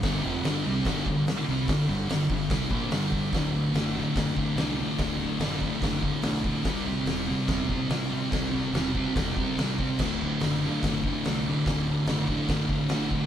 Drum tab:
CC |--------|--------|--------|--------|
HH |o-o-o-o-|o-o-o-o-|o-o-o-o-|o-o-o-o-|
SD |o-o-o-o-|o-o-o-o-|o-o-o-o-|o-o-o-o-|
BD |o---oo--|o--ooo-o|o---oo--|o--ooo-o|

CC |--------|--------|x-------|--------|
HH |o-o-o-o-|o-o-o-o-|--o-o-o-|o-o-o-o-|
SD |o-o-o-o-|o-o-o-o-|o-o-o-o-|o-o-o-o-|
BD |o---oo--|o--ooo-o|o---oo--|o--ooo-o|